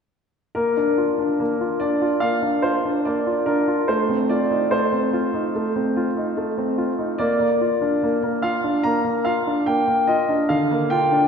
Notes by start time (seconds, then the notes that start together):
0.55 A#3 A#4
0.77 D4
0.98 F4
1.19 D4
1.40 A#3
1.61 F4
1.80 D4 D5
2.02 F4
2.20 A#3 F5
2.42 D4
2.62 F4 C5
2.85 D4
3.05 A#3 D5
3.27 F4
3.46 D4 A#4
3.68 F4
3.88 A3 C5
4.09 C4
4.29 F4 D5
4.51 D#4
4.71 A3 C5
4.92 C4
5.13 F4
5.34 D#4
5.55 A3
5.76 C4
5.97 F4
6.17 D#4
6.37 A3
6.58 C4
6.78 F4
6.98 D#4
7.18 A#3 D5
7.40 A#3
7.61 F4
7.82 D4
8.03 A#3
8.23 A#3
8.42 F4 F5
8.64 D4
8.84 A#3 A#5
9.05 A#3
9.25 F4 F5
9.47 D4
9.66 A#3 G5
9.88 A#3
10.07 F4 D#5
10.29 D4
10.49 D3 F5
10.71 A#3
10.90 F4 G5
11.12 D4